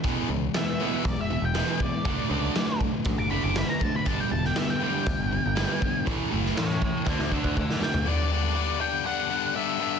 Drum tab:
HH |x---x---x---x---|x---x---x---x---|x---x---x---x---|x---x-----------|
SD |----o-------o---|----o-------o---|---oo-------o---|---oo---oo---oo-|
FT |----------------|----------------|----------------|---------------o|
BD |o-------o-----o-|o-----o-o-----o-|o-------o-----o-|o-----o-o-ooo---|

HH |----------------|
SD |----------------|
FT |----------------|
BD |----------------|